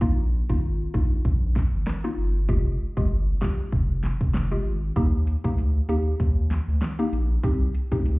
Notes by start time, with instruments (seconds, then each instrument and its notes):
0.01 analog synth bass A#1, synth pluck A#3 D#4 F4, kick
0.49 analog synth bass G#1, synth pluck A#3 D#4 F4, kick
0.94 analog synth bass A#1, synth pluck A#3 D#4 F4, kick
1.25 analog synth bass A#1, kick
1.56 kick, snare
1.73 analog synth bass G#1
1.87 cross-stick, snare
2.04 synth pluck A#3 D#4 F4
2.18 analog synth bass G1
2.49 analog synth bass F1, synth pluck G#3 F4 G4, kick
2.97 analog synth bass G1, synth pluck G#3 F4 G4, kick
3.41 synth pluck G#3 F4 G4, kick, snare
3.72 analog synth bass F1, kick
4.04 snare
4.21 analog synth bass F1, kick
4.34 snare
4.51 synth pluck G#3 F4 G4
4.65 analog synth bass G#1
4.96 analog synth bass D#2, synth pluck A#3 D#4 G4, kick, closed hi-hat
5.27 closed hi-hat
5.44 analog synth bass D2, synth pluck A#3 D#4 G4, kick
5.58 closed hi-hat
5.89 analog synth bass D#2, synth pluck A#3 D#4 G4, closed hi-hat
6.20 analog synth bass D#2, kick, closed hi-hat
6.51 snare, closed hi-hat
6.68 analog synth bass D2
6.82 snare, closed hi-hat
6.99 synth pluck A#3 D#4 G4
7.13 analog synth bass A#1, closed hi-hat
7.43 analog synth bass C2, synth pluck C4 D#4 G4, kick, closed hi-hat
7.75 closed hi-hat
7.92 analog synth bass D2, synth pluck C4 D#4 G4, kick
8.06 closed hi-hat